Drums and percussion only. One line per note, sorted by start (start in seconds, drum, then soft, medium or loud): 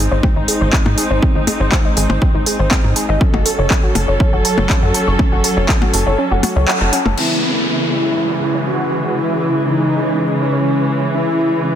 0.23 kick loud
0.23 percussion blips medium
0.48 open hi-hat loud
0.73 kick loud
0.73 clap loud
0.86 percussion blips medium
0.98 open hi-hat medium
1.23 kick loud
1.47 open hi-hat loud
1.47 percussion blips medium
1.72 kick loud
1.72 clap loud
1.97 open hi-hat medium
2.10 percussion blips medium
2.22 kick loud
2.46 open hi-hat medium
2.71 kick loud
2.71 clap loud
2.71 percussion blips medium
2.96 open hi-hat medium
3.21 kick loud
3.34 percussion blips medium
3.46 open hi-hat loud
3.70 kick loud
3.70 clap loud
3.95 open hi-hat medium
3.95 percussion blips medium
4.20 kick loud
4.45 open hi-hat loud
4.58 percussion blips medium
4.70 kick loud
4.70 clap loud
4.94 open hi-hat medium
5.19 kick loud
5.19 percussion blips medium
5.44 open hi-hat loud
5.69 kick loud
5.69 clap loud
5.82 percussion blips medium
5.94 open hi-hat medium
6.43 open hi-hat loud
6.43 percussion blips medium
6.68 clap loud
6.93 open hi-hat medium
7.06 percussion blips medium
7.18 crash medium